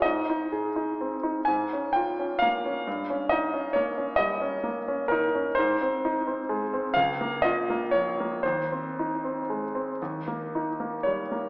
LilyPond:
\new Staff \with { instrumentName = "Grand piano" } { \time 12/8 \key aes \major \tempo 4. = 42 << { ees''4. aes''8 g''8 f''4 ees''8 des''8 ees''4 bes'8 | c''4. f''8 ees''8 des''8 c''4. r4 des''8 | } \\ { aes,16 ees'16 aes'16 ees'16 c'16 ees'16 aes,16 des'16 f'16 des'16 bes16 des'16 g,16 des'16 ees'16 des'16 bes16 des'16 g16 des'16 bes16 des'16 ees'16 des'16 | aes,16 c'16 ees'16 c'16 aes16 c'16 des,16 bes16 f'16 bes16 f16 bes16 ees,16 c'16 ees'16 c'16 aes16 c'16 ees,16 bes16 ees'16 bes16 g16 bes16 | } >> }